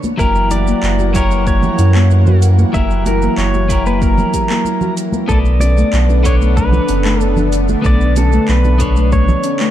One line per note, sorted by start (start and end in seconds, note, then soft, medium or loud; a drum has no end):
0.00 5.26 E3 medium
0.00 5.26 A#3 medium
0.00 0.17 A#3 medium
0.00 5.26 F#5 medium
0.00 high conga medium
0.00 shaker soft
0.17 0.73 F#1 loud
0.17 1.10 F#3 medium
0.17 0.33 A#3 medium
0.17 1.10 E4 medium
0.17 1.11 G4 medium
0.17 0.52 A#4 loud
0.17 1.12 A#4 medium
0.17 kick loud
0.17 shaker soft
0.35 shaker soft
0.51 0.66 E4 loud
0.51 1.15 D5 loud
0.51 open hi-hat medium
0.51 high bongo medium
0.51 high conga medium
0.51 shaker medium
0.67 0.82 A#3 medium
0.67 shaker soft
0.83 1.69 F#1 loud
0.83 clap medium
0.83 shaker soft
0.99 1.08 F#4 medium
0.99 high conga medium
0.99 shaker soft
1.13 2.70 F#3 medium
1.13 2.70 E4 medium
1.13 2.71 G4 medium
1.13 2.72 A#4 loud
1.13 1.46 C#5 loud
1.13 kick loud
1.13 open hi-hat medium
1.13 shaker medium
1.31 1.45 A#3 medium
1.31 shaker soft
1.47 1.61 A#3 medium
1.47 2.39 C#5 medium
1.47 kick loud
1.47 shaker soft
1.62 high conga medium
1.62 low conga medium
1.62 shaker soft
1.78 2.65 F#2 loud
1.78 1.94 E4 medium
1.78 open hi-hat medium
1.78 shaker medium
1.95 2.09 A#3 loud
1.95 clap medium
1.95 shaker soft
2.11 high conga medium
2.11 shaker soft
2.27 2.35 F#4 medium
2.27 low conga medium
2.27 shaker soft
2.42 open hi-hat medium
2.42 shaker medium
2.59 2.73 A#3 medium
2.59 high conga medium
2.59 shaker soft
2.73 3.28 F#1 medium
2.73 3.65 F#3 medium
2.73 2.89 A#3 medium
2.73 3.66 E4 medium
2.73 3.66 G4 medium
2.73 3.67 A#4 medium
2.73 3.04 E5 loud
2.73 kick loud
2.73 shaker soft
2.90 shaker soft
3.06 3.22 E4 loud
3.06 3.39 A#4 medium
3.06 open hi-hat medium
3.06 high bongo medium
3.06 high conga loud
3.06 shaker medium
3.22 3.37 A#3 loud
3.22 shaker soft
3.37 4.24 F#1 medium
3.37 3.86 C#5 medium
3.37 clap medium
3.37 shaker soft
3.54 3.63 F#4 medium
3.54 high conga medium
3.54 shaker soft
3.68 5.25 F#3 loud
3.68 5.25 E4 medium
3.68 5.26 G4 medium
3.68 5.27 A#4 loud
3.68 kick loud
3.68 open hi-hat medium
3.68 shaker medium
3.86 4.00 A#3 medium
3.86 4.01 B4 medium
3.86 shaker soft
4.02 4.16 A#3 medium
4.02 4.94 A#4 medium
4.02 kick loud
4.02 shaker soft
4.18 high bongo medium
4.18 high conga loud
4.18 low conga medium
4.18 shaker soft
4.34 4.42 G4 medium
4.34 kick medium
4.34 open hi-hat medium
4.34 shaker medium
4.49 4.64 A#3 medium
4.49 clap medium
4.49 high bongo medium
4.49 shaker soft
4.65 high conga medium
4.65 shaker soft
4.81 4.96 F#4 loud
4.81 low conga medium
4.81 shaker soft
4.97 open hi-hat medium
4.97 shaker medium
5.12 5.28 A#3 medium
5.12 high conga medium
5.12 shaker soft
5.28 5.84 B1 loud
5.28 9.71 D3 medium
5.28 9.71 A3 medium
5.28 5.44 A3 medium
5.28 6.20 B3 medium
5.28 9.71 B3 medium
5.28 9.71 D4 medium
5.28 5.37 A4 medium
5.28 6.21 A4 medium
5.28 6.22 B4 medium
5.28 6.22 D5 medium
5.28 kick loud
5.28 shaker soft
5.45 shaker soft
5.60 5.76 C#4 loud
5.60 6.26 D5 loud
5.60 open hi-hat medium
5.60 high bongo soft
5.60 high conga medium
5.60 shaker medium
5.78 5.92 A3 medium
5.78 shaker soft
5.93 6.79 B1 loud
5.93 clap medium
5.93 shaker soft
6.09 6.18 D4 medium
6.09 high conga medium
6.09 shaker soft
6.23 7.80 B3 medium
6.23 7.82 D4 loud
6.23 7.80 A4 medium
6.23 7.81 C#5 medium
6.23 6.34 C#5 medium
6.23 kick loud
6.23 open hi-hat medium
6.23 shaker medium
6.41 6.56 A3 medium
6.41 shaker soft
6.57 6.71 A3 medium
6.57 7.22 B4 medium
6.57 kick loud
6.57 shaker soft
6.72 high conga medium
6.72 low conga medium
6.72 shaker soft
6.89 7.75 F#1 loud
6.89 7.04 C#4 loud
6.89 open hi-hat medium
6.89 shaker medium
7.05 7.19 A3 loud
7.05 clap medium
7.05 shaker soft
7.21 7.49 A4 medium
7.21 high conga medium
7.21 shaker soft
7.37 7.46 D4 medium
7.37 low conga medium
7.37 shaker soft
7.53 open hi-hat medium
7.53 shaker medium
7.69 7.83 A3 medium
7.69 high conga medium
7.69 shaker soft
7.82 8.39 B1 medium
7.82 7.99 A3 medium
7.82 8.75 B3 medium
7.82 8.76 A4 medium
7.82 8.77 B4 medium
7.82 8.77 D5 medium
7.82 8.18 D5 loud
7.82 kick loud
7.82 shaker soft
8.01 shaker soft
8.16 8.32 C#4 loud
8.16 8.47 A4 medium
8.16 open hi-hat medium
8.16 high bongo soft
8.16 high conga medium
8.16 shaker medium
8.32 8.47 A3 loud
8.32 shaker soft
8.48 9.35 B1 loud
8.48 9.12 B4 loud
8.48 clap medium
8.48 shaker soft
8.64 8.73 D4 medium
8.64 high conga medium
8.64 shaker soft
8.78 9.71 B3 medium
8.78 9.71 D4 loud
8.78 9.71 A4 medium
8.78 9.71 C#5 medium
8.78 kick loud
8.78 open hi-hat medium
8.78 shaker medium
8.96 9.11 A3 medium
8.96 shaker soft
9.12 9.27 A3 medium
9.12 9.71 C#5 loud
9.12 kick loud
9.12 shaker soft
9.28 high bongo medium
9.28 high conga medium
9.28 low conga medium
9.28 shaker soft
9.44 9.59 C#4 medium
9.44 open hi-hat medium
9.44 shaker medium
9.60 9.71 A3 loud
9.60 clap medium
9.60 shaker soft